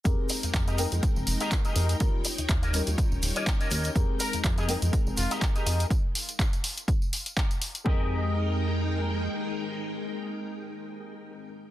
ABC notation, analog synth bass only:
X:1
M:4/4
L:1/16
Q:"Swing 16ths" 1/4=123
K:Fm
V:1 name="Analog synth bass" clef=bass
F,, z2 F,, F,,3 F,, F,,, F,,, F,,, z3 F,, z | E,, z2 E,, E,,3 E,, z E,,, E,,, z3 E,, z | F,, z2 F,, F,,3 F,, F,,, F,,, F,,, z3 F,, z | z16 |
F,,12 z4 | z16 |]